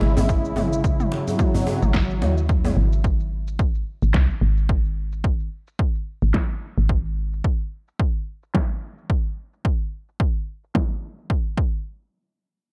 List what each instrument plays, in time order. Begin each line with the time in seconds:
Already playing: analog synth pad C#3 G#3 E4
0.01 fm bass G#1, djembe slap
0.17 mid tom, djembe tone, djembe bass, shaker
0.29 kick, shaker
0.45 shaker
0.56 mid tom, djembe tone
0.73 shaker
0.84 analog synth pad F#3, kick, shaker
1.00 mid tom, shaker
1.12 djembe slap
1.28 djembe tone, shaker
1.39 kick, mid tom, shaker
1.54 djembe bass, shaker
1.67 djembe tone
1.82 fm bass G#1, mid tom, shaker
1.94 kick, snare, shaker
2.10 shaker
2.22 fm bass D#2, mid tom, djembe slap
2.38 shaker
2.49 kick, shaker
2.64 mid tom, djembe tone, shaker
2.77 fm bass G#1
2.93 shaker
3.04 kick, shaker
3.20 shaker
3.48 shaker
3.59 kick, shaker
3.75 shaker
4.02 fm bass G#1, shaker
4.14 fm bass C2, kick, snare, shaker
4.30 shaker
4.41 fm bass G#1
4.57 shaker
4.69 kick, shaker
4.85 shaker
5.12 shaker
5.24 kick, shaker
5.40 shaker
5.67 shaker
5.79 kick
5.95 shaker
6.22 fm bass G#1, shaker
6.34 kick, snare
6.50 shaker
6.77 fm bass G#1, shaker
6.89 kick
7.05 shaker
7.33 shaker
7.44 kick
7.60 shaker
7.88 shaker
8.00 kick
8.43 shaker
8.55 kick, snare
8.98 shaker
9.10 kick
9.26 shaker
9.53 shaker
9.65 kick
10.09 shaker
10.20 kick
10.63 shaker
10.75 kick, snare
11.18 shaker
11.30 kick
11.57 kick